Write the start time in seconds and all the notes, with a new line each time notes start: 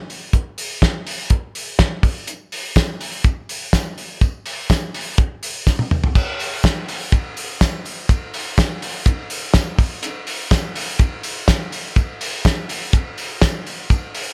0.10 open hi-hat
0.33 kick, closed hi-hat
0.58 open hi-hat
0.82 kick, snare, closed hi-hat
1.07 open hi-hat
1.30 kick, closed hi-hat
1.55 open hi-hat
1.79 kick, snare, closed hi-hat
2.03 kick, open hi-hat
2.27 closed hi-hat, tambourine
2.52 open hi-hat, tambourine
2.76 kick, snare, closed hi-hat, tambourine
3.01 open hi-hat, tambourine
3.24 kick, closed hi-hat, tambourine
3.49 open hi-hat, tambourine
3.73 kick, snare, closed hi-hat, tambourine
3.98 open hi-hat
4.21 kick, closed hi-hat, tambourine
4.46 open hi-hat, tambourine
4.70 kick, snare, closed hi-hat, tambourine
4.94 open hi-hat, tambourine
5.18 kick, closed hi-hat
5.43 open hi-hat, tambourine
5.67 kick, snare, tambourine
5.79 high tom
5.91 mid tom, tambourine
6.04 floor tom
6.15 kick, crash, tambourine
6.39 open hi-hat, tambourine
6.63 kick, snare, hi-hat pedal, ride, tambourine
6.88 open hi-hat, tambourine
7.12 kick, hi-hat pedal, ride, tambourine
7.37 open hi-hat, tambourine
7.61 kick, snare, hi-hat pedal, ride, tambourine
7.85 open hi-hat, tambourine
8.09 kick, hi-hat pedal, ride, tambourine
8.34 open hi-hat, tambourine
8.58 kick, snare, hi-hat pedal, ride, tambourine
8.82 open hi-hat, tambourine
9.06 kick, hi-hat pedal, ride, tambourine
9.30 open hi-hat, tambourine
9.54 kick, snare, hi-hat pedal, ride, tambourine
9.79 kick, open hi-hat, tambourine
10.03 hi-hat pedal, ride, tambourine
10.27 open hi-hat, tambourine
10.51 kick, snare, hi-hat pedal, ride, tambourine
10.76 open hi-hat, tambourine
10.99 kick, hi-hat pedal, ride, tambourine
11.23 open hi-hat, tambourine
11.48 kick, snare, hi-hat pedal, ride, tambourine
11.72 open hi-hat, tambourine
11.96 kick, hi-hat pedal, ride, tambourine
12.21 open hi-hat, tambourine
12.45 kick, snare, hi-hat pedal, ride, tambourine
12.69 open hi-hat, tambourine
12.93 kick, hi-hat pedal, ride, tambourine
13.18 open hi-hat, tambourine
13.42 kick, snare, hi-hat pedal, ride, tambourine
13.66 open hi-hat
13.90 kick, hi-hat pedal, ride, tambourine
14.15 open hi-hat, tambourine